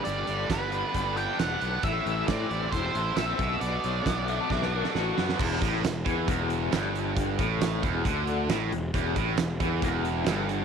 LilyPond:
<<
  \new Staff \with { instrumentName = "Lead electric guitar" } { \time 4/4 \key e \minor \tempo 4 = 135 d''4 b'4. g''8 fis''4 | e''4 d''4 c''4 e''4 | d''2. r4 | r1 |
r1 | r1 | }
  \new Staff \with { instrumentName = "Electric slide guitar" } { \time 4/4 \key e \minor r1 | r1 | r4. e''16 a''16 e''16 b'16 ais'16 a'16 fis'8. r16 | r1 |
r1 | r1 | }
  \new Staff \with { instrumentName = "Distorted electric guitar" } { \clef bass \time 4/4 \key e \minor g,8 g8 b8 d'8 g'8 d'8 g'8 b8 | a,8 e8 c'8 e'8 a'8 e'8 a'8 b,8 | b,8 fis8 b8 d'8 fis'8 d'8 fis'8 b8 | e,8 a,8 e,8 e8 e,4 g,4~ |
g,8 a,4 e,8 d4 a,8 e,8 | e,8 a,8 e,8 e8 e,4 g,4 | }
  \new Staff \with { instrumentName = "Overdriven electric guitar" } { \clef bass \time 4/4 \key e \minor g,8 d8 g8 b8 d'8 g'8 b8 d'8 | a,8 e8 e8 c'8 e'8 a'8 c'8 b,8 | b,8 fis8 fis8 b8 d'8 fis'8 b8 d'8 | e,8 a,8 e,8 e8 e,4 g,4~ |
g,8 a,4 e,8 d4 a,8 e,8 | e,8 a,8 e,8 e8 e,4 g,4 | }
  \new Staff \with { instrumentName = "Fingered electric bass" } { \clef bass \time 4/4 \key e \minor g,,8 g,,8 g,,4 g,,4 e,,8 b,,8 | a,,8 a,,8 a,8 a,,8 e,,8 a,,8 ais,,8 b,,8 | b,,8 b,,8 b,,4 b,,4 a,,8 fis,8 | e,,8 a,,8 e,,8 e,8 e,,4 g,,4~ |
g,,8 a,,4 e,,8 d,4 a,,8 e,,8 | e,,8 a,,8 e,,8 e,8 e,,4 g,,4 | }
  \new DrumStaff \with { instrumentName = "Drums" } \drummode { \time 4/4 hh8 hh8 <hh bd sn tamb>8 hh8 <hh bd>8 hh8 <hh sn tamb>8 hh8 | <hh bd>8 hh8 <hh bd sn tamb>8 hh8 <hh bd>8 hh8 <hh sn tamb>8 <hh bd>8 | hh8 hh8 <hh bd sn tamb>8 hh8 <bd sn>16 sn8 sn16 sn8 sn16 sn16 | <cymc bd>8 <hh bd>8 <hh sn tamb>8 <hh bd>8 <hh bd>8 hh8 <hh sn tamb>8 hh8 |
<hh bd>8 <hh bd>8 <hh sn tamb>8 <hh bd>8 <hh bd>8 hh8 <hh sn tamb>8 hh8 | <hh bd>8 <hh bd>8 <hh sn tamb>8 <hh bd>8 <hh bd>8 hh8 <hh sn tamb>8 hh8 | }
>>